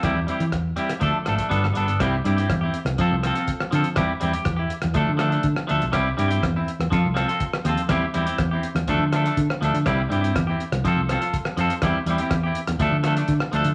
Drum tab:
HH |x-xxx-xxx-xxx-xx|x-xxx-xxx-xxx-xx|x-xxx-xxx-xxx-xx|x-xxx-xxx-xxx-xx|
SD |r---r--r--r--r--|r---r--r--r--r--|r---r--r--r--r--|r---r--r--r--r--|
BD |o---o---o--oo---|o---o---o---o---|o---o---o---o---|o---o---o---o---|

HH |x-xxx-xxx-xxx-xx|x-xxx-xxx-xxx-xx|x-xxx-xxx-xxx-xx|
SD |r---r--r--r--r--|r---r--r--r--r--|r---r--r--r--r--|
BD |o---o---o---o---|o---o---o---o---|o---o---o---o---|